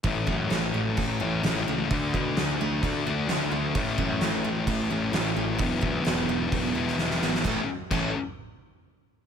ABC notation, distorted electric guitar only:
X:1
M:4/4
L:1/8
Q:1/4=130
K:A
V:1 name="Distorted electric guitar"
[A,,E,A,CE]4- [A,,E,A,CE] [A,,E,A,CE] [A,,E,A,CE]2 | [D,A,DF]4- [D,A,DF] [D,A,DF] [D,A,DF]2 | [A,,E,A,CE]4- [A,,E,A,CE] [A,,E,A,CE] [A,,E,A,CE]2 | [E,F,B,E]4- [E,F,B,E] [E,F,B,E] [E,F,B,E]2 |
[A,,E,A,CEA] z [A,,E,A,CEA] z4 z |]